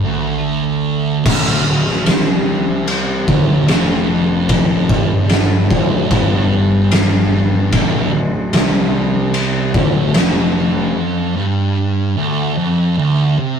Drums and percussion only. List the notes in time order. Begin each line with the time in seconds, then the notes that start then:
1.26 kick, crash
1.87 snare
2.06 snare, ride bell
2.88 ride bell
3.28 kick
3.68 snare, ride bell
4.49 kick, ride bell
4.89 kick
5.29 snare, ride bell
5.71 kick
6.11 kick, ride bell
6.91 snare, ride bell
7.73 kick, ride bell
8.53 snare, ride bell
9.34 ride bell
9.74 kick
10.14 snare, ride bell